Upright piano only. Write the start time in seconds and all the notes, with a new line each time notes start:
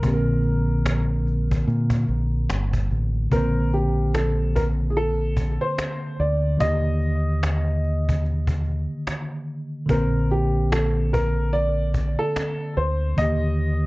Already playing: A#4
3.32 A#4
3.74 G4
4.14 A4
4.56 A#4
4.90 G#4
4.97 A4
5.61 C5
6.20 D5
6.60 D#5
9.90 A#4
10.31 G4
10.72 A4
11.13 A#4
11.53 D5
12.19 A4
12.77 C5
13.18 D#5